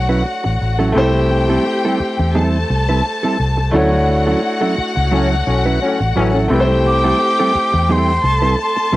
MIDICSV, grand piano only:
0, 0, Header, 1, 2, 480
1, 0, Start_track
1, 0, Tempo, 693642
1, 664, Time_signature, 4, 2, 24, 8
1, 6204, End_track
2, 0, Start_track
2, 0, Title_t, "Grand piano"
2, 0, Program_c, 0, 0
2, 0, Control_c, 0, 64, 127
2, 0, Note_on_c, 0, 57, 69
2, 0, Note_on_c, 0, 62, 59
2, 0, Note_on_c, 0, 64, 68
2, 0, Note_on_c, 0, 66, 58
2, 0, Note_on_c, 0, 73, 80
2, 627, Note_off_c, 0, 57, 0
2, 632, Note_off_c, 0, 62, 0
2, 635, Note_off_c, 0, 64, 0
2, 638, Note_on_c, 0, 57, 90
2, 639, Note_off_c, 0, 66, 0
2, 651, Note_on_c, 0, 60, 70
2, 658, Note_on_c, 0, 64, 71
2, 664, Note_on_c, 0, 67, 72
2, 668, Note_off_c, 0, 73, 0
2, 674, Control_c, 0, 64, 0
2, 676, Note_on_c, 0, 72, 95
2, 785, Control_c, 0, 64, 127
2, 2546, Note_off_c, 0, 57, 0
2, 2553, Note_off_c, 0, 60, 0
2, 2556, Note_off_c, 0, 64, 0
2, 2559, Note_off_c, 0, 67, 0
2, 2565, Note_off_c, 0, 72, 0
2, 2568, Note_on_c, 0, 57, 82
2, 2574, Note_on_c, 0, 62, 66
2, 2583, Note_on_c, 0, 64, 69
2, 2594, Note_on_c, 0, 66, 78
2, 2597, Control_c, 0, 64, 0
2, 2602, Note_on_c, 0, 73, 88
2, 2711, Control_c, 0, 64, 127
2, 4468, Note_off_c, 0, 57, 0
2, 4472, Note_off_c, 0, 62, 0
2, 4476, Note_off_c, 0, 64, 0
2, 4482, Note_off_c, 0, 66, 0
2, 4486, Note_off_c, 0, 73, 0
2, 4486, Note_on_c, 0, 57, 80
2, 4498, Note_on_c, 0, 60, 68
2, 4504, Note_on_c, 0, 64, 67
2, 4513, Control_c, 0, 64, 0
2, 4517, Note_on_c, 0, 67, 71
2, 4524, Note_on_c, 0, 71, 64
2, 4563, Note_off_c, 0, 71, 0
2, 4568, Note_on_c, 0, 72, 87
2, 4635, Control_c, 0, 64, 127
2, 6204, Note_off_c, 0, 57, 0
2, 6204, Note_off_c, 0, 60, 0
2, 6204, Note_off_c, 0, 64, 0
2, 6204, Note_off_c, 0, 67, 0
2, 6204, Note_off_c, 0, 72, 0
2, 6204, End_track
0, 0, End_of_file